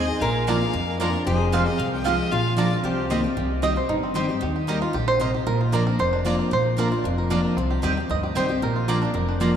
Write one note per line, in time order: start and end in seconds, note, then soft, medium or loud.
0.00 0.19 D#3 loud
0.00 0.21 C5 loud
0.00 0.21 D#5 loud
0.08 0.22 D#4 medium
0.08 0.21 G#4 medium
0.20 0.61 A#1 medium
0.20 0.72 A#2 medium
0.20 1.26 A#4 loud
0.20 0.45 F5 medium
0.46 0.61 F3 medium
0.46 0.57 A#3 medium
0.46 0.61 A#3 medium
0.46 0.61 D4 medium
0.46 0.54 D4 medium
0.46 0.57 F4 medium
0.46 0.60 F4 loud
0.46 0.55 F4 medium
0.46 0.55 A#4 medium
0.46 0.57 D5 medium
0.46 0.96 F5 medium
0.46 0.58 A#5 loud
0.61 0.75 D4 soft
0.61 0.73 F4 medium
0.73 1.24 F2 medium
0.73 1.13 F2 medium
0.99 1.13 F3 medium
0.99 1.10 A#3 medium
0.99 1.14 A#3 loud
0.99 1.14 D4 loud
0.99 1.07 D4 medium
0.99 1.10 F4 medium
0.99 1.07 F4 medium
0.99 1.12 F4 loud
0.99 1.24 A#4 loud
0.99 1.07 A#4 medium
0.99 1.10 D5 loud
0.99 1.10 A#5 loud
1.13 1.27 D4 soft
1.13 1.26 F4 medium
1.26 1.66 F1 medium
1.26 1.77 F2 loud
1.26 2.35 G#4 loud
1.26 1.51 C5 medium
1.52 1.66 F3 medium
1.52 1.62 G#3 loud
1.52 1.66 G#3 medium
1.52 1.59 C4 medium
1.52 1.67 C4 loud
1.52 1.62 F4 medium
1.52 1.59 F4 medium
1.52 1.59 G4 medium
1.52 1.64 G4 medium
1.52 1.68 C5 medium
1.52 1.63 C5 medium
1.52 1.63 F5 loud
1.66 1.79 C4 soft
1.66 1.78 G4 medium
1.66 1.80 D#5 loud
1.78 2.18 C2 medium
1.78 2.29 C3 medium
1.78 1.92 F5 medium
1.93 2.06 G5 medium
2.04 2.30 F3 loud
2.04 2.14 G#3 medium
2.04 2.31 G#3 medium
2.04 2.12 C4 medium
2.04 2.31 C4 loud
2.04 2.15 F4 medium
2.04 2.12 F4 medium
2.04 2.12 G4 medium
2.04 2.32 G4 loud
2.04 2.15 C5 medium
2.04 2.33 D#5 medium
2.04 2.15 F5 loud
2.31 2.71 A#1 medium
2.31 2.82 A#2 medium
2.31 2.80 F4 medium
2.31 2.57 F5 loud
2.56 2.71 F3 loud
2.56 2.67 A#3 medium
2.56 2.71 A#3 medium
2.56 2.64 D4 medium
2.56 2.71 D4 medium
2.56 2.67 F4 medium
2.56 2.64 F4 medium
2.56 2.69 F4 loud
2.56 2.64 A#4 medium
2.56 2.82 D5 medium
2.56 2.67 D5 medium
2.56 2.68 A#5 loud
2.71 2.84 D4 soft
2.71 2.83 F4 medium
2.84 3.23 C2 medium
2.84 3.34 C3 medium
2.84 3.22 G4 medium
2.84 3.21 C5 medium
3.10 3.24 D#3 medium
3.10 3.24 A#3 medium
3.10 3.20 C4 medium
3.10 3.17 C4 medium
3.10 3.24 C4 loud
3.10 3.20 G4 medium
3.10 3.13 G4 medium
3.10 3.23 G4 loud
3.10 3.20 D#5 loud
3.10 3.20 A#5 medium
3.24 3.37 C4 medium
3.24 3.36 G4 medium
3.37 3.76 C2 medium
3.37 3.87 C3 medium
3.37 3.74 G4 medium
3.62 3.76 D#3 medium
3.62 3.76 G3 medium
3.62 3.72 C4 medium
3.62 3.77 C4 loud
3.62 3.72 G4 medium
3.62 3.75 G4 medium
3.62 3.87 D#5 loud
3.62 3.73 D#5 medium
3.62 3.73 G5 loud
3.76 3.89 C4 soft
3.76 3.88 G4 medium
3.76 4.13 C5 medium
3.89 4.29 G1 medium
3.89 4.39 G2 medium
3.89 4.14 D#4 medium
4.03 4.39 C4 medium
4.14 4.28 D#3 medium
4.14 4.29 G3 medium
4.14 4.25 C4 medium
4.14 4.29 C4 loud
4.14 4.25 G4 medium
4.14 4.27 G4 medium
4.14 4.42 C5 medium
4.14 4.25 D#5 loud
4.14 4.25 G5 loud
4.29 4.42 C4 soft
4.29 4.41 G4 medium
4.41 4.81 D#2 medium
4.41 4.91 D#3 medium
4.41 4.55 G4 medium
4.56 4.92 G4 medium
4.67 4.81 G3 medium
4.67 4.78 A#3 medium
4.67 4.81 A#3 medium
4.67 5.05 D#4 medium
4.67 4.81 D#4 medium
4.67 4.78 G4 loud
4.67 4.80 G4 medium
4.67 4.78 D#5 medium
4.67 4.78 A#5 loud
4.81 4.94 D#4 soft
4.81 4.95 F4 medium
4.81 4.93 G4 medium
4.93 5.33 A#1 medium
4.93 5.19 D3 medium
4.93 5.09 G4 medium
5.08 5.19 C5 loud
5.20 5.45 C3 medium
5.20 5.30 A#3 medium
5.20 5.30 G4 medium
5.20 5.47 C5 medium
5.20 5.30 D#5 medium
5.20 5.30 A#5 loud
5.34 5.46 G4 medium
5.47 5.86 A#1 medium
5.47 5.97 A#2 medium
5.47 5.60 A#4 medium
5.61 5.97 F4 medium
5.72 5.98 F3 medium
5.72 5.82 A#3 medium
5.72 5.98 A#3 medium
5.72 5.99 D4 medium
5.72 5.83 F4 medium
5.72 5.99 F4 medium
5.72 5.85 A#4 medium
5.72 5.83 D5 loud
5.72 5.83 A#5 loud
5.87 6.00 A#4 medium
5.99 6.39 F1 medium
5.99 6.49 F2 medium
5.99 6.24 C5 medium
6.13 6.49 D4 medium
6.25 6.50 F3 loud
6.25 6.35 A#3 loud
6.25 6.50 A#3 medium
6.25 6.51 D4 medium
6.25 6.35 F4 medium
6.25 6.51 F4 loud
6.25 6.35 D5 loud
6.25 6.39 D5 loud
6.25 6.35 A#5 medium
6.39 6.75 A#4 medium
6.51 6.91 A#1 medium
6.51 7.02 A#2 medium
6.51 6.77 C5 loud
6.77 6.91 F3 medium
6.77 6.87 A#3 medium
6.77 6.91 A#3 loud
6.77 6.91 D4 loud
6.77 6.88 F4 loud
6.77 6.90 F4 medium
6.77 7.16 A#4 medium
6.77 6.88 D5 medium
6.77 6.88 A#5 loud
6.91 7.05 D4 soft
6.91 7.04 F4 medium
6.91 7.28 F4 medium
7.04 7.43 F1 medium
7.04 7.55 F2 medium
7.04 7.29 D4 medium
7.18 7.43 A#4 medium
7.30 7.55 F3 medium
7.30 7.40 A#3 medium
7.30 7.56 A#3 medium
7.30 7.56 D4 medium
7.30 7.40 F4 medium
7.30 7.56 F4 loud
7.30 7.40 D5 loud
7.30 7.40 A#5 medium
7.45 7.57 A#4 medium
7.57 7.76 C2 medium
7.57 8.07 C3 medium
7.57 7.94 C4 medium
7.71 7.82 G4 medium
7.82 8.06 D#2 medium
7.82 7.96 D#3 medium
7.82 7.96 G3 medium
7.82 7.93 C4 medium
7.82 7.97 C4 medium
7.82 7.96 G4 medium
7.82 7.93 G4 loud
7.82 7.96 G4 loud
7.82 7.93 D#5 medium
7.82 7.93 G5 loud
7.97 8.10 C4 soft
7.97 8.22 G4 medium
7.97 8.09 G4 medium
8.09 8.32 D2 medium
8.09 8.59 G2 medium
8.09 8.23 D#5 loud
8.23 8.48 G4 medium
8.35 8.58 C2 medium
8.35 8.49 D#3 medium
8.35 8.49 G3 loud
8.35 8.45 C4 medium
8.35 8.50 C4 loud
8.35 8.45 G4 medium
8.35 8.47 G4 loud
8.35 8.63 C5 medium
8.35 8.45 D#5 loud
8.35 8.46 G5 loud
8.49 8.62 C4 medium
8.49 8.61 G4 medium
8.49 8.62 G4 medium
8.62 9.01 A#1 medium
8.62 9.12 A#2 medium
8.62 8.87 A#4 medium
8.76 9.12 F4 medium
8.88 9.01 F3 medium
8.88 8.98 A#3 loud
8.88 9.02 A#3 medium
8.88 9.02 D4 loud
8.88 8.98 F4 loud
8.88 9.01 F4 loud
8.88 9.14 A#4 medium
8.88 8.98 D5 loud
8.88 8.98 A#5 loud
9.02 9.27 D4 medium
9.02 9.15 D4 medium
9.02 9.14 F4 medium
9.14 9.54 F1 medium
9.14 9.56 F2 medium
9.14 9.52 A#4 medium
9.29 9.56 D4 medium
9.40 9.54 F3 medium
9.40 9.50 A#3 medium
9.40 9.54 A#3 loud
9.40 9.54 D4 medium
9.40 9.56 F4 medium
9.40 9.50 F4 medium
9.40 9.54 F4 loud
9.40 9.50 D5 medium
9.40 9.51 A#5 loud